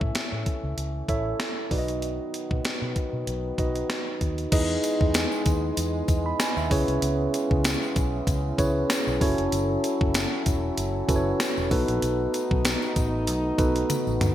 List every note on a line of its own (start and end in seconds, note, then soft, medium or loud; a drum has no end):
0.00 0.12 A2 medium
0.00 1.67 E3 medium
0.00 1.69 A3 medium
0.00 1.67 C#4 medium
0.00 0.44 E4 medium
0.00 0.44 A4 medium
0.00 0.44 C#5 medium
0.00 0.45 E5 medium
0.00 kick medium
0.15 muted fingered electric bass stroke soft
0.15 snare loud
0.15 closed hi-hat loud
0.32 0.43 A2 medium
0.46 kick medium
0.46 closed hi-hat medium
0.64 0.74 C#2 medium
0.77 1.01 C#2 medium
0.77 closed hi-hat medium
1.08 1.32 A1 medium
1.08 1.71 E4 medium
1.08 1.71 A4 medium
1.08 1.71 C#5 medium
1.08 1.72 E5 medium
1.08 kick medium
1.08 closed hi-hat medium
1.40 snare loud
1.40 closed hi-hat medium
1.71 2.18 B1 medium
1.71 4.35 D#3 medium
1.71 4.35 F#3 medium
1.71 4.35 B3 medium
1.71 2.71 D#4 medium
1.71 2.72 F#4 medium
1.71 2.72 B4 medium
1.71 1.78 D5 medium
1.71 kick loud
1.71 open hi-hat medium
1.78 2.75 D#5 medium
1.88 closed hi-hat soft
2.02 closed hi-hat medium
2.34 closed hi-hat medium
2.51 2.61 B2 medium
2.51 kick medium
2.65 muted fingered electric bass stroke soft
2.65 snare loud
2.65 closed hi-hat medium
2.82 2.92 B2 medium
2.96 kick medium
2.96 closed hi-hat medium
3.13 3.24 B2 medium
3.27 3.51 B1 medium
3.27 closed hi-hat medium
3.58 3.82 B1 medium
3.58 4.28 D#4 medium
3.58 4.28 F#4 medium
3.58 4.28 B4 medium
3.58 4.28 D#5 medium
3.58 kick medium
3.58 closed hi-hat medium
3.75 closed hi-hat soft
3.90 snare loud
3.90 closed hi-hat medium
4.21 4.45 D#2 medium
4.21 kick medium
4.21 closed hi-hat medium
4.38 closed hi-hat medium
4.52 4.76 E2 loud
4.52 6.69 G#3 medium
4.52 9.17 B3 medium
4.52 5.44 D#4 medium
4.52 5.44 E4 medium
4.52 5.44 G#4 medium
4.52 6.69 G#4 medium
4.52 5.44 B4 medium
4.52 6.69 D#5 medium
4.52 5.44 D#5 loud
4.52 kick loud
4.52 closed hi-hat medium
4.52 crash medium
4.52 tambourine soft
4.83 closed hi-hat medium
4.83 tambourine soft
5.01 5.24 E2 medium
5.01 kick loud
5.14 snare loud
5.14 closed hi-hat loud
5.14 tambourine medium
5.32 tambourine soft
5.46 5.69 D#2 loud
5.46 kick medium
5.46 closed hi-hat medium
5.46 tambourine medium
5.77 6.01 E2 loud
5.77 closed hi-hat medium
5.77 tambourine medium
6.08 6.32 E2 medium
6.08 kick medium
6.08 closed hi-hat medium
6.08 tambourine medium
6.26 6.39 B5 medium
6.39 6.56 G#5 medium
6.39 snare loud
6.39 closed hi-hat medium
6.39 tambourine medium
6.57 6.67 D#2 medium
6.57 6.87 E5 medium
6.57 tambourine soft
6.70 6.84 C#2 loud
6.70 9.19 C#3 medium
6.70 9.19 G#3 medium
6.70 7.71 C#4 medium
6.70 7.71 E4 medium
6.70 9.19 E4 medium
6.70 7.72 G#4 medium
6.70 7.72 B4 medium
6.70 7.72 C#5 loud
6.70 kick loud
6.70 open hi-hat medium
6.70 tambourine medium
6.88 6.99 C2 medium
6.88 closed hi-hat medium
7.02 7.26 C#2 loud
7.02 closed hi-hat medium
7.02 tambourine medium
7.34 closed hi-hat medium
7.34 tambourine soft
7.51 7.74 C#2 loud
7.51 kick medium
7.64 snare loud
7.64 closed hi-hat loud
7.64 tambourine medium
7.82 tambourine soft
7.96 8.20 B1 medium
7.96 kick loud
7.96 closed hi-hat medium
7.96 tambourine medium
8.27 8.51 C#2 medium
8.27 kick loud
8.27 closed hi-hat loud
8.27 tambourine medium
8.58 8.82 C#2 medium
8.58 9.19 C#4 medium
8.58 9.20 E4 medium
8.58 9.21 G#4 medium
8.58 9.21 B4 medium
8.58 9.20 C#5 loud
8.58 kick medium
8.58 closed hi-hat medium
8.58 tambourine medium
8.90 snare loud
8.90 closed hi-hat medium
8.90 tambourine medium
9.07 9.18 B1 medium
9.07 tambourine soft
9.21 9.34 F#1 medium
9.21 11.69 F#3 medium
9.21 10.21 C#4 medium
9.21 11.69 C#4 medium
9.21 10.22 E4 medium
9.21 11.69 E4 medium
9.21 10.22 F#4 medium
9.21 11.69 A4 medium
9.21 10.22 A4 medium
9.21 10.22 C#5 loud
9.21 kick loud
9.21 open hi-hat medium
9.21 tambourine medium
9.38 9.49 F1 medium
9.38 closed hi-hat medium
9.52 9.76 F#1 loud
9.52 closed hi-hat medium
9.52 tambourine soft
9.84 closed hi-hat medium
9.84 tambourine soft
10.01 10.24 F#1 medium
10.01 kick loud
10.14 snare loud
10.14 closed hi-hat loud
10.14 tambourine medium
10.46 10.70 E1 loud
10.46 kick medium
10.46 closed hi-hat medium
10.46 tambourine medium
10.78 11.01 F#1 medium
10.78 closed hi-hat loud
10.78 tambourine medium
11.08 11.32 F#1 loud
11.08 11.71 C#4 medium
11.08 11.71 E4 medium
11.08 11.70 F#4 medium
11.08 11.70 A4 medium
11.08 11.16 B4 medium
11.08 kick medium
11.08 closed hi-hat medium
11.08 tambourine soft
11.16 11.75 C#5 loud
11.40 snare loud
11.40 closed hi-hat medium
11.40 tambourine medium
11.57 11.68 E1 medium
11.57 tambourine soft
11.70 11.84 B1 loud
11.70 14.35 A3 medium
11.70 12.71 B3 medium
11.70 14.35 B3 medium
11.70 12.71 D#4 medium
11.70 14.35 D#4 loud
11.70 12.72 F#4 medium
11.70 12.72 A4 medium
11.70 12.72 B4 loud
11.70 kick loud
11.70 open hi-hat medium
11.70 tambourine medium
11.88 11.99 A#1 medium
11.88 closed hi-hat medium
12.02 12.26 B1 loud
12.02 closed hi-hat medium
12.02 tambourine soft
12.34 closed hi-hat medium
12.34 tambourine soft
12.51 12.74 B1 loud
12.51 kick medium
12.65 snare loud
12.65 closed hi-hat loud
12.65 tambourine medium
12.82 tambourine soft
12.96 13.27 A1 medium
12.96 kick loud
12.96 closed hi-hat medium
12.96 tambourine medium
13.27 13.51 B1 loud
13.27 closed hi-hat loud
13.27 tambourine medium
13.58 13.82 B1 loud
13.58 14.28 B3 medium
13.58 14.28 D#4 medium
13.58 14.28 F#4 medium
13.58 14.28 A4 medium
13.58 14.28 B4 medium
13.58 kick medium
13.58 closed hi-hat medium
13.58 tambourine medium
13.76 closed hi-hat soft
13.90 closed hi-hat medium
13.90 high tom medium
13.90 tambourine medium
14.07 14.18 A1 medium
14.07 tambourine soft
14.21 14.34 D2 medium
14.21 closed hi-hat medium
14.21 mid tom loud
14.21 tambourine soft